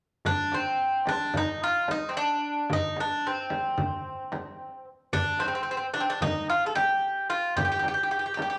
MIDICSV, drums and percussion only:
0, 0, Header, 1, 3, 480
1, 0, Start_track
1, 0, Tempo, 542495
1, 226, Time_signature, 9, 3, 24, 8
1, 7596, End_track
2, 0, Start_track
2, 0, Title_t, "Darbuka"
2, 220, Note_on_c, 9, 64, 78
2, 309, Note_off_c, 9, 64, 0
2, 460, Note_on_c, 9, 63, 56
2, 548, Note_off_c, 9, 63, 0
2, 935, Note_on_c, 9, 63, 51
2, 1023, Note_off_c, 9, 63, 0
2, 1181, Note_on_c, 9, 64, 72
2, 1269, Note_off_c, 9, 64, 0
2, 1666, Note_on_c, 9, 63, 59
2, 1754, Note_off_c, 9, 63, 0
2, 2391, Note_on_c, 9, 64, 80
2, 2479, Note_off_c, 9, 64, 0
2, 2623, Note_on_c, 9, 63, 53
2, 2712, Note_off_c, 9, 63, 0
2, 3340, Note_on_c, 9, 64, 62
2, 3428, Note_off_c, 9, 64, 0
2, 3822, Note_on_c, 9, 63, 64
2, 3910, Note_off_c, 9, 63, 0
2, 4536, Note_on_c, 9, 64, 76
2, 4625, Note_off_c, 9, 64, 0
2, 4772, Note_on_c, 9, 63, 55
2, 4860, Note_off_c, 9, 63, 0
2, 5255, Note_on_c, 9, 63, 62
2, 5344, Note_off_c, 9, 63, 0
2, 5492, Note_on_c, 9, 64, 65
2, 5581, Note_off_c, 9, 64, 0
2, 5977, Note_on_c, 9, 63, 66
2, 6066, Note_off_c, 9, 63, 0
2, 6693, Note_on_c, 9, 64, 77
2, 6781, Note_off_c, 9, 64, 0
2, 6933, Note_on_c, 9, 63, 57
2, 7022, Note_off_c, 9, 63, 0
2, 7182, Note_on_c, 9, 62, 21
2, 7271, Note_off_c, 9, 62, 0
2, 7296, Note_on_c, 9, 62, 22
2, 7384, Note_off_c, 9, 62, 0
2, 7409, Note_on_c, 9, 63, 59
2, 7498, Note_off_c, 9, 63, 0
2, 7596, End_track
3, 0, Start_track
3, 0, Title_t, "Frame drum"
3, 226, Note_on_c, 9, 64, 67
3, 314, Note_off_c, 9, 64, 0
3, 466, Note_on_c, 9, 64, 53
3, 555, Note_off_c, 9, 64, 0
3, 946, Note_on_c, 9, 64, 67
3, 1034, Note_off_c, 9, 64, 0
3, 1183, Note_on_c, 9, 64, 70
3, 1272, Note_off_c, 9, 64, 0
3, 1665, Note_on_c, 9, 64, 64
3, 1753, Note_off_c, 9, 64, 0
3, 2385, Note_on_c, 9, 64, 76
3, 2474, Note_off_c, 9, 64, 0
3, 2623, Note_on_c, 9, 64, 55
3, 2711, Note_off_c, 9, 64, 0
3, 3099, Note_on_c, 9, 64, 62
3, 3188, Note_off_c, 9, 64, 0
3, 3341, Note_on_c, 9, 64, 75
3, 3430, Note_off_c, 9, 64, 0
3, 3827, Note_on_c, 9, 64, 60
3, 3916, Note_off_c, 9, 64, 0
3, 4542, Note_on_c, 9, 64, 70
3, 4630, Note_off_c, 9, 64, 0
3, 4795, Note_on_c, 9, 64, 52
3, 4883, Note_off_c, 9, 64, 0
3, 5504, Note_on_c, 9, 64, 85
3, 5593, Note_off_c, 9, 64, 0
3, 5985, Note_on_c, 9, 64, 57
3, 6073, Note_off_c, 9, 64, 0
3, 6705, Note_on_c, 9, 64, 79
3, 6793, Note_off_c, 9, 64, 0
3, 6940, Note_on_c, 9, 64, 54
3, 7028, Note_off_c, 9, 64, 0
3, 7421, Note_on_c, 9, 64, 62
3, 7509, Note_off_c, 9, 64, 0
3, 7596, End_track
0, 0, End_of_file